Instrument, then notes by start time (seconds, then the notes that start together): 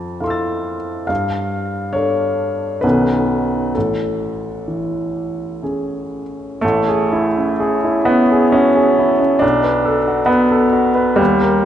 grand piano
Already playing: F2 F3 A5
0.20 E4 A4 F5 C6
0.27 E6 A6
1.07 G2 F5
1.93 D4 A4 C#5
2.81 B1 D#3 B3 C#4 A4 B4
3.75 A1 A4
4.68 E3
5.63 C#4 G#4
6.61 A1 A3
6.88 G#4
7.12 E4
7.37 C#4
7.60 G#4
7.84 E4
8.05 B3 C#4
8.31 G#4
8.52 C#4 F#4
8.76 G#4
8.99 E4
9.20 C#4
9.39 B1 D4
9.63 B4
9.85 A4
10.08 F#4
10.26 B3 B4
10.51 A4
10.73 F#4
10.95 B4
11.16 D#2 G3
11.41 A#4